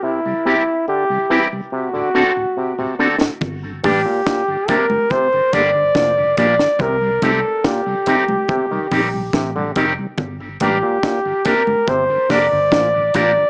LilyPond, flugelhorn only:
\new Staff \with { instrumentName = "Flugelhorn" } { \time 4/4 \key d \minor \tempo 4 = 71 e'4 g'8 r8 fis'4. r8 | \key g \minor r8 g'4 bes'8 c''8 d''4 d''8 | bes'8 a'8 g'2~ g'8 r8 | r8 g'4 bes'8 c''8 d''4 d''8 | }